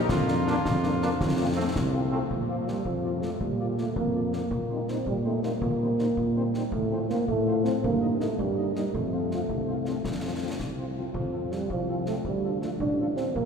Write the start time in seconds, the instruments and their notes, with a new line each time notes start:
0.09 tuba F2, cornet F4, concert bass drum, snare, crash
0.28 french horn section A#3 D4 F4, snare
0.47 french horn section A#3 D4 F4, trombone section A#3 D4, snare
0.65 tuba F2, concert bass drum, snare
0.83 french horn section A#3 D4 F4, snare
1.02 trombone section A#3 D4, french horn section A#3 D4 F4, snare
1.21 tuba F2, concert bass drum, snare
1.38 french horn section A3 C4 F4
1.55 trombone section A3 C4, french horn section A3 C4 F4
1.76 tuba C2, concert bass drum, snare
1.93 french horn section A3 C4 F4
2.10 trombone section A3 C4, french horn section A3 C4 F4
2.31 tuba A#2, euphonium F3, concert bass drum
2.49 french horn section F3 A#3 F4, cornet D5
2.68 french horn section F3 A#3 F4, euphonium G3, cornet D5, snare
2.85 tuba F2, euphonium F3, concert bass drum
3.03 french horn section F3 A#3 F4, cornet D5
3.22 french horn section F3 A#3 F4, euphonium A3, cornet D5, snare
3.40 tuba A#2, euphonium G3, concert bass drum
3.59 french horn section F3 A#3 F4, cornet D5
3.78 french horn section F3 A#3 F4, euphonium A3, cornet D5, snare
3.96 tuba F2, euphonium A#3, concert bass drum
4.14 french horn section F3 A#3 F4, cornet D5
4.32 french horn section F3 A#3 F4, euphonium A#3, cornet D5, snare
4.51 tuba A#2, concert bass drum
4.70 french horn section G3 C4 D#4, cornet C5
4.88 french horn section G3 C4 D#4, euphonium C4, cornet C5, snare
5.06 tuba A#2, euphonium G3, concert bass drum
5.24 french horn section G3 C4 D#4, euphonium A3, cornet C5
5.43 french horn section G3 C4 D#4, euphonium A#3, cornet C5, snare
5.61 tuba A#2, euphonium A#3, concert bass drum
5.81 french horn section G3 C4 D#4, cornet C5
5.99 french horn section G3 C4 D#4, cornet C5, snare
6.17 tuba A#2, concert bass drum
6.36 french horn section G3 C4 D#4, cornet C5
6.54 french horn section G3 C4 D#4, cornet C5, snare
6.72 tuba A2, euphonium A3, concert bass drum
6.91 french horn section F3 C4 F4, cornet C5
7.10 french horn section F3 C4 F4, euphonium A#3, cornet C5, snare
7.28 tuba A2, euphonium A3, concert bass drum
7.46 french horn section F3 C4 F4, cornet C5
7.64 french horn section F3 C4 F4, euphonium C4, cornet C5, snare
7.84 tuba G2, euphonium A#3, concert bass drum
8.01 french horn section A#3 D#4, cornet D#5
8.19 euphonium A3, french horn section A#3 D#4, cornet D#5, snare
8.39 tuba G2, euphonium G3, concert bass drum
8.57 french horn section A#3 D#4, cornet D#5
8.75 euphonium G3, french horn section A#3 D#4, cornet D#5, snare
8.93 tuba F2, euphonium A3, concert bass drum
9.12 french horn section F3 C4 F4, cornet C5
9.31 french horn section F3 C4 F4, cornet C5, snare
9.49 tuba C2, concert bass drum
9.66 french horn section F3 C4 F4, cornet C5
9.85 french horn section F3 C4 F4, cornet C5, snare
10.04 tuba F2, concert bass drum, snare
10.24 french horn section F3 C4 F4, cornet C5
10.42 french horn section F3 C4 F4, cornet C5
10.60 tuba C2, concert bass drum, snare
10.77 french horn section F3 C4 F4, cornet C5
10.97 french horn section F3 C4 F4, cornet C5
11.14 tuba F2, euphonium F3, concert bass drum
11.32 french horn section F3 C4 F4, cornet A4
11.52 french horn section F3 C4 F4, euphonium G3, cornet A4, snare
11.70 tuba C2, euphonium F3, concert bass drum
11.89 french horn section F3 C4 F4, cornet A4
12.06 french horn section F3 C4 F4, euphonium A3, cornet A4, snare
12.25 tuba D2, euphonium G3, concert bass drum
12.44 french horn section F3 D4 F4, cornet A4
12.61 french horn section F3 D4 F4, euphonium A3, cornet A4, snare
12.79 tuba A1, euphonium D4, concert bass drum
12.99 french horn section F3 D4 F4, cornet A4
13.16 french horn section F3 D4 F4, euphonium C4, cornet A4, snare
13.34 tuba A#1, euphonium A#3, concert bass drum